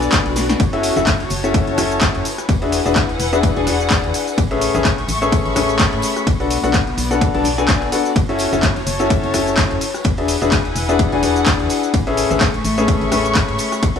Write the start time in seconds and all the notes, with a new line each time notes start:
Already playing: B3 D4 F#4 A4 B4 D5 G#5
0.02 closed hi-hat, tambourine, shaker
0.12 kick, clap, closed hi-hat, ride, tambourine, shaker
0.25 B1, closed hi-hat, tambourine
0.36 snare, open hi-hat, tambourine, shaker
0.49 snare, closed hi-hat, tambourine, shaker
0.60 F#1, kick, closed hi-hat, ride, tambourine, shaker
0.66 C#5
0.73 C#4 E4 F#4 A4 E5, closed hi-hat, tambourine
0.83 open hi-hat, tambourine, shaker
0.96 F#1 C#4 E4 F#4 A4 E5, closed hi-hat, tambourine, high conga, shaker
1.07 kick, clap, closed hi-hat, ride, tambourine, shaker
1.18 A5, closed hi-hat, tambourine, high conga
1.30 F#1, open hi-hat, tambourine, shaker
1.44 C#4 E4 F#4 A4 E5, closed hi-hat, tambourine, shaker
1.54 kick, closed hi-hat, ride, tambourine, high conga, shaker
1.67 F#1, closed hi-hat, tambourine
1.78 C#4 E4 F#4 A4 E5, cross-stick, open hi-hat, tambourine, high conga, shaker
1.91 closed hi-hat, tambourine, shaker
2.01 kick, clap, closed hi-hat, ride, tambourine, shaker
2.15 F#2, closed hi-hat, tambourine
2.25 E4, open hi-hat, tambourine, shaker
2.31 B4
2.38 G#5, cross-stick, closed hi-hat, tambourine, shaker
2.47 E1 F#5, kick, closed hi-hat, ride, tambourine, shaker
2.62 D4 F#4 G#4 B4 E5, closed hi-hat, tambourine
2.72 open hi-hat, tambourine, shaker
2.86 E1 D4 F#4 G#4 B4 E5, closed hi-hat, tambourine, shaker
2.96 kick, clap, closed hi-hat, ride, tambourine, shaker
3.09 closed hi-hat, tambourine
3.19 E1, open hi-hat, tambourine, shaker
3.33 D4 F#4 G#4 B4 E5, closed hi-hat, tambourine, shaker
3.43 kick, closed hi-hat, ride, tambourine, shaker
3.56 E1 D4 F#4 G#4 B4 G#5, closed hi-hat, tambourine, high conga
3.67 D4 F#4 G#4 B4 F#5, open hi-hat, tambourine, high conga, shaker
3.80 closed hi-hat, tambourine, shaker
3.90 kick, clap, closed hi-hat, ride, tambourine, shaker
4.04 E2, closed hi-hat, tambourine
4.14 open hi-hat, tambourine, shaker
4.27 closed hi-hat, tambourine, shaker
4.38 A1 A3, kick, closed hi-hat, ride, tambourine, shaker
4.48 C#4 G#4 A4 B4 E5, closed hi-hat, tambourine
4.55 C#6
4.61 open hi-hat, tambourine, shaker
4.74 A1 C#4 G#4 A4 B4 E5, closed hi-hat, tambourine, high conga, shaker
4.85 kick, clap, closed hi-hat, ride, tambourine, shaker
4.91 B5
4.98 closed hi-hat, tambourine, high conga
5.08 A1, open hi-hat, tambourine, shaker
5.22 C#4 G#4 A4 B4 E5, closed hi-hat, tambourine, shaker
5.32 kick, closed hi-hat, ride, tambourine, high conga, shaker
5.45 A1, closed hi-hat, tambourine
5.56 C#4 G#4 A4 B4 E5, cross-stick, open hi-hat, tambourine, high conga, shaker
5.69 closed hi-hat, tambourine, shaker
5.79 kick, clap, closed hi-hat, ride, tambourine, shaker
5.93 A2, closed hi-hat, tambourine
6.02 open hi-hat, tambourine, shaker
6.16 cross-stick, closed hi-hat, tambourine, shaker
6.27 B1 B3, kick, closed hi-hat, ride, tambourine, shaker
6.40 D4 F#4 A4 B4 F#5, closed hi-hat, tambourine
6.46 F#4
6.50 open hi-hat, tambourine, shaker
6.64 B1 D4 F#4 A4 B4 F#5, closed hi-hat, tambourine, shaker
6.74 kick, clap, closed hi-hat, ride, tambourine, shaker
6.80 D5
6.87 closed hi-hat, tambourine
6.98 B1, open hi-hat, tambourine, shaker
7.11 D4 F#4 A4 B4 F#5, closed hi-hat, tambourine, shaker
7.21 kick, closed hi-hat, ride, tambourine, shaker
7.34 B1 D4 F#4 A4 B4 A5, closed hi-hat, tambourine, high conga
7.44 open hi-hat, tambourine, high conga, shaker
7.58 D4 F#4 A4 B4 G#5, closed hi-hat, tambourine, shaker
7.68 D4 F#4 A4 B4 G#5, kick, clap, closed hi-hat, ride, tambourine, shaker
7.82 A1, closed hi-hat, tambourine
7.92 D4 F#4 A4 B4 F#5, open hi-hat, tambourine, shaker
8.05 closed hi-hat, tambourine, shaker
8.16 F#1, kick, closed hi-hat, ride, tambourine, shaker
8.25 C#4 E4 C#5, tambourine
8.29 F#4 A4 E5, closed hi-hat
8.39 open hi-hat, tambourine, shaker
8.53 F#1 C#4 E4 F#4 A4 E5, closed hi-hat, tambourine, high conga, shaker
8.63 A5, kick, clap, closed hi-hat, ride, tambourine, shaker
8.76 closed hi-hat, tambourine, high conga
8.87 F#1, open hi-hat, tambourine, shaker
8.99 C#4 E4 F#4 A4 E5, closed hi-hat, tambourine, shaker
9.10 kick, closed hi-hat, ride, tambourine, high conga, shaker
9.23 F#1, closed hi-hat, tambourine
9.34 C#4 E4 F#4 A4 E5, cross-stick, open hi-hat, tambourine, high conga, shaker
9.47 closed hi-hat, tambourine, shaker
9.57 kick, clap, closed hi-hat, ride, tambourine, shaker
9.71 F#2, closed hi-hat, tambourine
9.81 E4, open hi-hat, tambourine, shaker
9.91 B4, cross-stick, tambourine, shaker
10.01 E1 G#5, kick, closed hi-hat, ride, tambourine
10.05 shaker
10.17 D4 F#4 G#4 B4 E5, closed hi-hat, tambourine
10.28 F#5, open hi-hat, tambourine, shaker
10.41 E1 D4 F#4 G#4 B4 E5, closed hi-hat, tambourine, shaker
10.52 kick, clap, closed hi-hat, ride, tambourine, shaker
10.65 closed hi-hat, tambourine
10.76 E1, open hi-hat, tambourine, shaker
10.89 D4 F#4 G#4 B4 E5, closed hi-hat, tambourine, shaker
10.99 kick, closed hi-hat, ride, tambourine, shaker
11.12 E1 D4 F#4 G#4 B4 G#5, closed hi-hat, tambourine, high conga
11.23 D4 F#4 G#4 B4 F#5, open hi-hat, tambourine, high conga, shaker
11.36 closed hi-hat, tambourine, shaker
11.46 kick, clap, closed hi-hat, ride, tambourine, shaker
11.59 E2, closed hi-hat, tambourine
11.70 open hi-hat, tambourine, shaker
11.83 closed hi-hat, tambourine, shaker
11.94 A1 A3, kick, closed hi-hat, ride, tambourine, shaker
12.05 C#4 G#4 A4 B4 E5, closed hi-hat, tambourine
12.09 C#6
12.17 open hi-hat, tambourine, shaker
12.28 A1 C#4 G#4 A4 B4 E5 B5, closed hi-hat, tambourine, high conga, shaker
12.41 kick, clap, closed hi-hat, ride, tambourine, shaker
12.54 closed hi-hat, tambourine, high conga
12.64 A1, open hi-hat, tambourine, shaker
12.78 C#4 G#4 A4 B4 E5, closed hi-hat, tambourine, shaker
12.88 kick, closed hi-hat, ride, tambourine, high conga, shaker
13.01 A1, closed hi-hat, tambourine
13.12 C#4 G#4 A4 B4 E5, cross-stick, open hi-hat, tambourine, high conga, shaker
13.25 closed hi-hat, tambourine, shaker
13.35 kick, clap, closed hi-hat, ride, tambourine, shaker
13.48 A2, closed hi-hat, tambourine
13.58 open hi-hat, tambourine, shaker
13.72 cross-stick, closed hi-hat, tambourine, shaker
13.83 B1 B3, kick, closed hi-hat, ride, tambourine, shaker
13.91 F#4
13.96 D4 F#4 A4 B4 F#5, closed hi-hat, tambourine